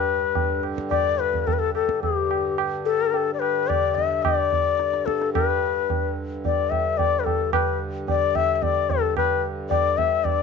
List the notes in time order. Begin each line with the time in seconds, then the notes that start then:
Already playing: G2 D3 B4
0.35 tabla tin, tabla ge
0.63 tabla na
0.78 tabla ke
0.91 D5, tabla na, tabla ge
1.19 B4, tabla te
1.34 tabla ge
1.47 A4, tabla tin, tabla ge
1.53 B4
1.59 A4
1.74 A4, tabla na
1.89 tabla ke
2.02 G4, tabla tin, tabla ge
2.31 tabla na
2.58 tabla na
2.85 A4, tabla na
3.14 tabla tin
3.34 D5
3.40 B4, tabla na
3.68 D5, tabla na, tabla ge
3.95 E5, tabla ge
4.23 D5, tabla na, tabla ge
4.53 tabla ge
4.79 tabla te
4.93 tabla te
5.06 A4, tabla ke
5.21 tabla te
5.33 B4, tabla na, tabla ge
5.90 tabla tin, tabla ge
6.45 D5, tabla tin, tabla ge
6.70 E5, tabla tin, tabla ge
6.97 D5, tabla tin, tabla ge
7.19 B4
7.24 A4, tabla tin, tabla ge
7.53 B4, tabla na, tabla ge
8.08 D5, tabla tin, tabla ge
8.35 E5, tabla tin, tabla ge
8.55 E5
8.63 D5, tabla tin, tabla ge
8.90 A4, tabla tin, tabla ge
9.17 B4, tabla na, tabla ge
9.70 D5, tabla tin, tabla ge
9.97 E5, tabla tin, tabla ge
10.24 D5, tabla tin, tabla ge